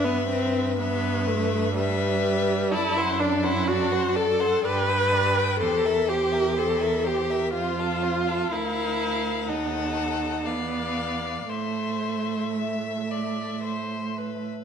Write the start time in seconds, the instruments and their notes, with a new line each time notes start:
Already playing: cello G2, violin B4 E5
0.04 viola B3
0.29 viola C4
0.79 viola B3, violin B4 E5
1.27 viola A3
1.75 viola G3, violin B4 E5
2.72 cello F#2, viola E4, violin A4 D5
2.97 violin C5 F#5
3.20 viola D4, violin A4 D5
3.43 viola E4, violin C5 F#5
3.68 viola F#4, violin A4 D5
3.91 violin C5 F#5
4.15 violin A4 D5, viola A4
4.40 violin C5 F#5
4.63 cello G2, violin G4 D5, viola B4
4.89 violin B4 G5
5.12 violin G4 D5
5.37 violin B4 G5
5.59 cello E2, violin G4 C5, viola A4
5.85 violin A#4 E5
6.08 violin G4 C5, viola G4
6.32 violin A#4 E5
6.56 violin G4 C5, viola A4
6.81 violin A#4 E5
7.05 viola G4, violin G4 C5
7.30 violin A#4 E5
7.53 cello F2, violin F4 C5, viola F4
7.79 violin A4 F5
8.02 violin F4 C5
8.27 violin A4 F5
8.51 cello D2, viola E4, violin A#4 F5
9.48 cello D#2, viola D#4, violin A4 F#5
10.45 cello E2, viola B3, violin D5 F5
11.49 cello A2, viola A3, violin C5 E5
12.56 violin E5
13.11 violin D5
13.64 violin C5
14.18 violin B4